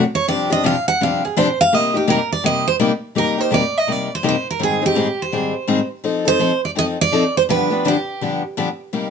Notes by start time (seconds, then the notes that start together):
0.15 C#5
0.28 G2 C3 F3 C4 D4 G4 D5
0.50 F3 C4 D4 G4 D#5
0.63 G2 C3 F3 C4 D4 G4 F5
0.88 F#5
1.01 G2 C3 F3 C4 D4 G4 F5
1.25 G#4
1.37 G2 C3 F3 C4 D4 G4 C5
1.61 F5
1.72 C3 G3 A#3 D#4 G4 D#5
1.94 A#3 D#4 G4
2.07 C3 G3 A#3 D#4 G4 A#4
2.32 D5
2.44 C3 G3 A#3 D#4 G4 D#5
2.68 C5
2.79 C3 G3 A#3 D#4 G4
3.15 C3 G3 A#3 D#4 G4 A#4
3.38 A#3 D#4 G4 C5
3.51 C3 G3 A#3 D#4 G4 D5
3.78 D#5
3.87 C3 G3 A#3 D#4 G4
3.92 D5
4.15 C5
4.23 C3 G3 A#3 D#4 G4
4.29 C5
4.51 A#4
4.59 G#2 D#3 G3 C4 D#4 G#4
4.63 G#4
4.81 G3 C4 D#4 G#4
4.86 G4
4.95 G#2 D#3 G3 C4 D#4 G#4
5.22 C5
5.32 G#2 D#3 G3 C4 D#4 G#4
5.68 G#2 D#3 G3 C4 D#4 G#4
6.04 F3 C4 D#4 A4
6.25 C4 D#4 A4 C5
6.39 F3 C4 D#4 A4
6.65 D5
6.75 F3 C4 D#4 A4 D#5
7.01 D5
7.12 F3 C4 D#4 A4
7.37 C5
7.49 G2 D3 F3 B3 D4 G4 B4
7.70 F3 B3 D4 G4
7.85 G2 D3 F3 B3 D4 G4
8.21 G2 D3 F3 B3 D4 G4
8.57 G2 D3 F3 B3 D4 G4
8.93 C3 G3 A#3 D#4 G4